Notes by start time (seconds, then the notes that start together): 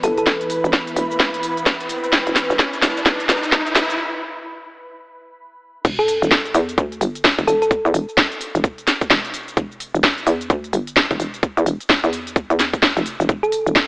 Already playing: E3 B3 E4 B4 B5, riser
0.03 G1 A4, open hi-hat, shaker
0.18 A4, closed hi-hat, shaker
0.27 kick, snare, closed hi-hat, shaker
0.41 closed hi-hat, shaker
0.50 open hi-hat, shaker
0.64 E1, shaker
0.73 kick, snare, closed hi-hat, shaker
0.87 closed hi-hat, shaker
0.96 E1, open hi-hat, shaker
1.11 shaker
1.20 E1, kick, snare, closed hi-hat, shaker
1.34 closed hi-hat, shaker
1.43 open hi-hat, shaker
1.57 closed hi-hat, shaker
1.66 kick, snare, closed hi-hat, shaker
1.80 closed hi-hat, shaker
1.89 open hi-hat, shaker
2.04 closed hi-hat, shaker
2.13 E1, kick, snare, closed hi-hat, shaker
2.27 E1, closed hi-hat, shaker
2.36 snare, open hi-hat, shaker
2.50 E1, shaker
2.59 kick, snare, closed hi-hat, shaker
2.73 closed hi-hat, shaker
2.82 E1, snare, open hi-hat, shaker
2.97 shaker
3.06 E1, kick, snare, closed hi-hat, shaker
3.20 closed hi-hat, shaker
3.29 E1, snare, open hi-hat, shaker
3.43 closed hi-hat, shaker
3.52 E1, kick, snare, closed hi-hat, shaker
3.67 closed hi-hat, shaker
3.75 G1, snare, open hi-hat, shaker
3.90 closed hi-hat, shaker
5.85 E1 E3 B3 B4, kick, closed hi-hat, crash, sub drop, shaker
5.99 A4, shaker
6.08 open hi-hat, shaker
6.22 E1, shaker
6.31 kick, snare, closed hi-hat, shaker
6.45 closed hi-hat, shaker
6.54 E2, open hi-hat, shaker
6.69 closed hi-hat, shaker
6.78 D2, kick, closed hi-hat, shaker
6.92 closed hi-hat, shaker
7.01 G1, open hi-hat, shaker
7.15 closed hi-hat, shaker
7.24 kick, snare, closed hi-hat, shaker
7.39 E1, kick, closed hi-hat, shaker
7.47 E1 A4, open hi-hat, shaker
7.62 A4, closed hi-hat, shaker
7.71 kick, closed hi-hat, shaker
7.85 E2, shaker
7.94 E1, open hi-hat, shaker
8.09 shaker
8.17 kick, snare, closed hi-hat, shaker
8.32 closed hi-hat, shaker
8.41 open hi-hat, shaker
8.55 E1, closed hi-hat, shaker
8.64 kick, closed hi-hat, shaker
8.78 closed hi-hat, shaker
8.87 snare, open hi-hat, shaker
9.01 kick, closed hi-hat, shaker
9.10 E1, kick, snare, closed hi-hat, shaker
9.25 closed hi-hat, shaker
9.34 open hi-hat, shaker
9.48 closed hi-hat, shaker
9.57 E1, kick, closed hi-hat, shaker
9.72 shaker
9.80 open hi-hat, shaker
9.95 E1, shaker
10.03 kick, snare, closed hi-hat, shaker
10.18 closed hi-hat, shaker
10.27 E2, open hi-hat, shaker
10.41 closed hi-hat, shaker
10.50 D2, kick, closed hi-hat, shaker
10.64 closed hi-hat, shaker
10.73 G1, open hi-hat, shaker
10.87 closed hi-hat, shaker
10.96 kick, snare, closed hi-hat, shaker
11.11 E1, kick, closed hi-hat, shaker
11.20 E1, open hi-hat, shaker
11.34 closed hi-hat, shaker
11.43 kick, closed hi-hat, shaker
11.57 E2, closed hi-hat, shaker
11.66 E1, open hi-hat, shaker
11.81 closed hi-hat, shaker
11.89 kick, snare, closed hi-hat, shaker
12.04 E2, closed hi-hat, shaker
12.13 open hi-hat, shaker
12.27 closed hi-hat, shaker
12.36 kick, closed hi-hat, shaker
12.50 E2, closed hi-hat, shaker
12.59 snare, open hi-hat, shaker
12.73 kick, open hi-hat, shaker
12.82 kick, snare, closed hi-hat, shaker
12.97 F1, closed hi-hat, shaker
13.06 open hi-hat, shaker
13.20 E1, closed hi-hat, shaker
13.29 E1 D4, kick, closed hi-hat, shaker
13.43 A4, shaker
13.52 open hi-hat, shaker
13.66 E1, shaker
13.76 kick, snare, closed hi-hat, shaker